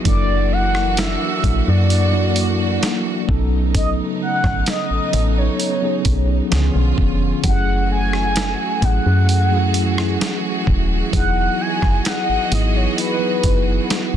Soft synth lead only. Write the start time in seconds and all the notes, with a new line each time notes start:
0.06 D5
0.53 F#5
0.99 E5
1.68 D5
3.76 D#5
4.22 F#5
4.69 D#5
5.38 C#5
7.46 F#5
7.92 G#5
8.84 F#5
11.15 F#5
11.61 G#5
12.07 F#5
12.53 D#5
12.76 C#5
12.99 B4